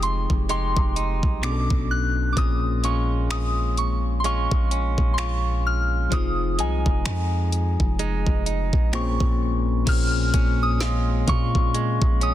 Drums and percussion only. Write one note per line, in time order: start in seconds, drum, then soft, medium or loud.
0.03 closed hi-hat medium
0.30 kick medium
0.49 closed hi-hat medium
0.77 kick medium
0.96 closed hi-hat medium
1.23 kick medium
1.43 finger snap loud
1.43 closed hi-hat medium
1.70 kick loud
2.37 kick loud
2.37 closed hi-hat medium
2.84 closed hi-hat medium
3.30 finger snap loud
3.30 closed hi-hat medium
3.77 closed hi-hat medium
4.24 closed hi-hat medium
4.51 kick medium
4.71 closed hi-hat medium
4.98 kick medium
5.18 finger snap loud
5.18 closed hi-hat medium
6.12 kick loud
6.12 closed hi-hat medium
6.59 closed hi-hat medium
6.86 kick medium
7.05 finger snap loud
7.05 closed hi-hat medium
7.52 closed hi-hat medium
7.80 kick medium
7.99 closed hi-hat medium
8.27 kick medium
8.46 closed hi-hat medium
8.73 kick medium
8.93 finger snap loud
8.93 closed hi-hat medium
9.20 kick loud
9.87 kick loud
9.87 closed hi-hat medium
9.87 crash loud
10.34 kick loud
10.34 closed hi-hat medium
10.80 snare loud
10.80 closed hi-hat medium
11.28 kick loud
11.28 closed hi-hat medium
11.55 kick medium
11.74 closed hi-hat medium
12.02 kick loud
12.21 closed hi-hat medium